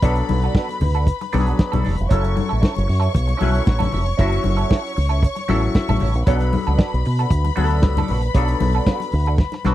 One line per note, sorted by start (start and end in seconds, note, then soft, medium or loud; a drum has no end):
0.00 0.21 B1 loud
0.00 0.83 F#3 medium
0.00 0.83 B3 medium
0.00 0.23 D4 medium
0.00 0.18 F#4 medium
0.00 2.07 B4 medium
0.00 2.06 B5 medium
0.00 kick loud
0.00 closed hi-hat medium
0.04 0.84 D4 medium
0.04 0.17 A4 loud
0.04 0.84 A4 loud
0.15 muted clean electric guitar stroke medium
0.15 closed hi-hat soft
0.28 0.47 B1 medium
0.28 muted clean electric guitar stroke soft
0.28 open hi-hat soft
0.28 high conga medium
0.42 0.55 D4 soft
0.42 0.56 F#4 medium
0.42 0.56 A4 medium
0.42 closed hi-hat soft
0.55 0.76 D4 medium
0.55 0.69 F#4 medium
0.55 0.68 A4 medium
0.55 kick loud
0.55 snare loud
0.69 muted clean electric guitar stroke medium
0.69 closed hi-hat medium
0.69 muted conga soft
0.81 1.09 D2 medium
0.81 muted clean electric guitar stroke soft
0.81 open hi-hat medium
0.81 low conga medium
0.94 1.06 D4 soft
0.94 1.06 F#4 medium
0.94 1.06 A4 medium
0.94 closed hi-hat soft
1.07 muted clean electric guitar stroke soft
1.07 kick medium
1.07 closed hi-hat medium
1.21 muted clean electric guitar stroke soft
1.21 closed hi-hat soft
1.21 muted conga soft
1.32 1.52 B1 medium
1.32 1.93 F#3 medium
1.32 1.93 B3 medium
1.32 1.47 D4 medium
1.32 1.94 D4 medium
1.32 1.47 F#4 medium
1.32 1.40 G4 medium
1.32 1.46 A4 medium
1.32 open hi-hat medium
1.32 high conga medium
1.40 1.97 G#4 medium
1.46 1.57 D4 soft
1.46 1.58 F#4 medium
1.46 1.58 A4 medium
1.46 closed hi-hat soft
1.58 muted clean electric guitar stroke soft
1.58 kick loud
1.58 snare loud
1.58 muted conga soft
1.72 1.82 B1 medium
1.72 1.82 D4 medium
1.72 1.83 F#4 medium
1.72 1.84 A4 medium
1.72 closed hi-hat soft
1.72 muted conga soft
1.72 high conga medium
1.72 low conga medium
1.83 1.95 E1 medium
1.83 2.01 D4 medium
1.83 1.97 F#4 medium
1.83 1.96 A4 medium
1.83 open hi-hat medium
1.83 low conga medium
1.97 2.08 F1 medium
1.97 muted clean electric guitar stroke soft
1.97 closed hi-hat soft
2.09 2.39 F#1 loud
2.09 2.91 F#3 medium
2.09 2.31 C#4 medium
2.09 2.91 C#4 medium
2.09 2.23 E4 medium
2.09 2.91 E4 medium
2.09 2.22 A4 medium
2.09 2.92 A4 medium
2.09 6.23 C#5 medium
2.09 6.23 C#6 medium
2.09 kick loud
2.09 closed hi-hat medium
2.09 muted conga soft
2.23 muted clean electric guitar stroke soft
2.23 closed hi-hat soft
2.23 muted conga soft
2.35 muted clean electric guitar stroke soft
2.35 open hi-hat soft
2.35 high conga medium
2.49 2.60 A1 medium
2.49 2.60 C#4 soft
2.49 2.60 E4 medium
2.49 2.61 A4 medium
2.49 closed hi-hat soft
2.61 2.83 C#4 medium
2.61 2.75 E4 medium
2.61 2.74 A4 medium
2.61 kick loud
2.61 snare loud
2.61 muted conga soft
2.75 2.86 F#1 loud
2.75 muted clean electric guitar stroke soft
2.75 closed hi-hat soft
2.75 muted conga soft
2.87 3.07 F#2 loud
2.87 muted clean electric guitar stroke soft
2.87 open hi-hat medium
3.00 3.11 C#4 medium
3.00 3.13 E4 medium
3.00 3.13 A4 medium
3.00 closed hi-hat soft
3.12 3.33 B1 medium
3.12 muted clean electric guitar stroke soft
3.12 kick medium
3.12 closed hi-hat medium
3.12 muted conga soft
3.27 muted clean electric guitar stroke soft
3.27 closed hi-hat soft
3.27 muted conga soft
3.37 3.59 B1 medium
3.37 4.01 F#3 medium
3.37 3.53 C#4 medium
3.37 3.52 E4 medium
3.37 3.51 A4 medium
3.37 open hi-hat medium
3.37 high conga medium
3.42 4.02 C#4 medium
3.42 4.02 E4 medium
3.42 4.02 B4 medium
3.52 3.63 C#4 soft
3.52 3.63 E4 medium
3.52 3.64 A4 medium
3.52 closed hi-hat soft
3.65 3.85 A1 medium
3.65 muted clean electric guitar stroke soft
3.65 kick loud
3.65 snare loud
3.65 muted conga soft
3.79 3.90 C#4 medium
3.79 3.91 E4 medium
3.79 3.92 A4 medium
3.79 closed hi-hat soft
3.79 muted conga soft
3.79 high conga medium
3.79 low conga medium
3.92 4.11 F1 medium
3.92 4.09 C#4 medium
3.92 4.06 E4 medium
3.92 4.05 A4 medium
3.92 open hi-hat medium
3.92 low conga medium
4.06 muted clean electric guitar stroke soft
4.06 closed hi-hat soft
4.17 4.37 F#1 loud
4.17 4.99 F#3 medium
4.17 4.39 C#4 medium
4.17 5.00 C#4 medium
4.17 4.30 E4 loud
4.17 5.00 E4 medium
4.17 5.00 F#4 loud
4.17 4.30 A4 medium
4.17 kick loud
4.17 closed hi-hat medium
4.31 muted clean electric guitar stroke soft
4.31 closed hi-hat medium
4.31 muted conga soft
4.42 4.63 F#1 loud
4.42 muted clean electric guitar stroke soft
4.42 open hi-hat soft
4.42 high conga medium
4.57 4.68 C#4 medium
4.57 4.69 E4 medium
4.57 4.70 A4 medium
4.57 closed hi-hat soft
4.69 4.91 C#4 medium
4.69 4.83 E4 medium
4.69 4.81 A4 medium
4.69 kick loud
4.69 snare loud
4.69 muted conga soft
4.82 muted clean electric guitar stroke soft
4.86 closed hi-hat medium
4.96 5.25 C#2 medium
4.96 muted clean electric guitar stroke soft
4.96 open hi-hat medium
5.09 5.26 C#4 medium
5.09 5.26 E4 medium
5.09 5.25 A4 medium
5.09 closed hi-hat soft
5.23 kick medium
5.23 closed hi-hat medium
5.35 muted clean electric guitar stroke soft
5.35 closed hi-hat soft
5.35 muted conga soft
5.48 5.67 A1 medium
5.48 6.09 F#3 medium
5.48 5.69 C#4 medium
5.48 6.10 C#4 medium
5.48 5.63 E4 medium
5.48 6.10 E4 medium
5.48 5.62 A4 medium
5.48 6.10 A4 loud
5.48 5.73 C#5 medium
5.48 open hi-hat soft
5.48 high conga medium
5.62 muted clean electric guitar stroke soft
5.62 closed hi-hat medium
5.74 5.88 E5 medium
5.74 muted clean electric guitar stroke soft
5.74 kick loud
5.74 snare loud
5.74 muted conga soft
5.89 5.98 A1 medium
5.89 6.00 C#4 medium
5.89 6.00 E4 medium
5.89 6.01 A4 medium
5.89 6.24 E5 medium
5.89 closed hi-hat soft
5.89 muted conga soft
5.89 high conga medium
5.89 low conga medium
6.00 6.15 A1 medium
6.00 6.18 C#4 medium
6.00 6.15 E4 medium
6.00 6.14 A4 medium
6.00 open hi-hat medium
6.00 low conga medium
6.14 6.23 A#1 medium
6.14 muted clean electric guitar stroke medium
6.14 closed hi-hat medium
6.26 6.55 B1 medium
6.26 7.07 F#3 medium
6.26 7.07 B3 medium
6.26 7.07 D4 medium
6.26 6.48 D4 medium
6.26 6.40 F#4 medium
6.26 7.08 A4 medium
6.26 6.39 A4 loud
6.26 9.75 B4 medium
6.26 9.75 B5 medium
6.26 kick loud
6.26 closed hi-hat medium
6.26 muted conga soft
6.40 muted clean electric guitar stroke soft
6.40 closed hi-hat soft
6.40 muted conga soft
6.53 muted clean electric guitar stroke soft
6.53 open hi-hat medium
6.53 high conga medium
6.66 6.76 C#2 medium
6.66 6.76 D4 soft
6.66 6.77 F#4 medium
6.66 6.78 A4 medium
6.66 closed hi-hat soft
6.78 6.99 D4 medium
6.78 6.93 F#4 medium
6.78 6.92 A4 medium
6.78 kick loud
6.78 snare loud
6.93 7.02 B1 medium
6.93 muted clean electric guitar stroke soft
6.93 closed hi-hat soft
7.05 7.24 B2 loud
7.05 muted clean electric guitar stroke soft
7.05 open hi-hat medium
7.19 7.31 D4 soft
7.19 7.32 F#4 medium
7.19 7.32 A4 medium
7.19 closed hi-hat soft
7.31 7.49 D2 loud
7.31 kick loud
7.31 closed hi-hat medium
7.44 muted clean electric guitar stroke soft
7.44 closed hi-hat soft
7.44 muted conga soft
7.56 7.85 D2 medium
7.56 8.17 F#3 medium
7.56 8.18 B3 medium
7.56 7.72 D4 medium
7.56 8.18 D4 medium
7.56 7.71 F#4 medium
7.56 7.64 G#4 medium
7.56 7.70 A4 medium
7.56 open hi-hat soft
7.56 high conga medium
7.64 8.21 A4 medium
7.70 7.83 D4 medium
7.70 7.83 F#4 medium
7.70 7.83 A4 medium
7.70 closed hi-hat soft
7.82 8.01 C#2 medium
7.82 kick loud
7.82 snare loud
7.82 muted conga soft
7.97 8.09 D4 medium
7.97 8.10 F#4 medium
7.97 8.10 A4 loud
7.97 closed hi-hat soft
7.97 muted conga soft
7.97 high conga medium
7.97 low conga medium
8.08 8.28 A#1 medium
8.08 8.26 D4 medium
8.08 8.22 F#4 medium
8.08 8.22 A4 medium
8.08 open hi-hat medium
8.08 low conga medium
8.22 muted clean electric guitar stroke medium
8.22 closed hi-hat medium
8.34 8.53 B1 loud
8.34 9.15 F#3 medium
8.34 9.16 B3 medium
8.34 8.55 D4 medium
8.34 9.16 D4 medium
8.34 8.49 F#4 medium
8.34 8.48 A4 loud
8.34 9.16 A4 medium
8.34 kick loud
8.34 closed hi-hat medium
8.48 muted clean electric guitar stroke soft
8.48 closed hi-hat medium
8.48 muted conga soft
8.60 8.79 B1 medium
8.60 muted clean electric guitar stroke soft
8.60 open hi-hat medium
8.60 high conga medium
8.73 8.86 F#4 medium
8.73 8.87 A4 medium
8.73 closed hi-hat soft
8.77 8.85 D4 soft
8.86 9.08 D4 medium
8.86 9.01 F#4 medium
8.86 9.00 A4 medium
8.86 kick loud
8.86 snare loud
8.86 muted conga soft
9.00 muted clean electric guitar stroke medium
9.00 closed hi-hat medium
9.00 muted conga soft
9.12 9.41 D2 medium
9.12 muted clean electric guitar stroke soft
9.12 open hi-hat medium
9.26 9.37 D4 medium
9.26 9.38 F#4 medium
9.26 9.39 A4 medium
9.26 closed hi-hat soft
9.38 muted clean electric guitar stroke soft
9.38 kick loud
9.38 snare medium
9.38 muted conga soft
9.52 muted clean electric guitar stroke soft
9.52 snare medium
9.52 muted conga soft
9.64 9.75 B1 medium
9.64 9.75 F#3 medium
9.64 9.75 B3 medium
9.64 9.75 D4 medium
9.64 9.75 F#4 medium
9.64 9.75 A4 medium
9.64 snare medium
9.64 high conga medium